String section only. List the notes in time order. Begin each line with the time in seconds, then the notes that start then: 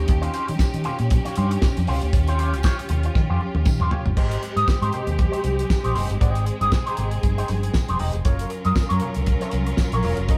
Already playing: C#4 D#4 G4
1.88 F4
4.17 G#3 C4 G4
6.21 G#4
8.25 F#3 C#4 F4 A#4